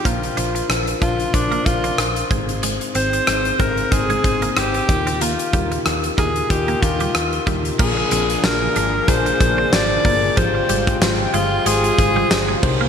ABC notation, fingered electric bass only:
X:1
M:4/4
L:1/8
Q:"Swing 16ths" 1/4=93
K:Bbmix
V:1 name="Fingered electric bass" clef=bass
B,,, B,,, B,,, B,,, B,,, B,,, B,,, A,,,- | A,,, A,,, A,,, A,,, A,,, A,,, A,,, E,,- | E,, E,, E,, E,, E,, E,, E,, E,, | B,,, B,,, B,,, A,,, B,,, B,,, A,,, G,,, |
A,,, A,,, A,,, G,,, A,,, A,,, G,,, C,, |]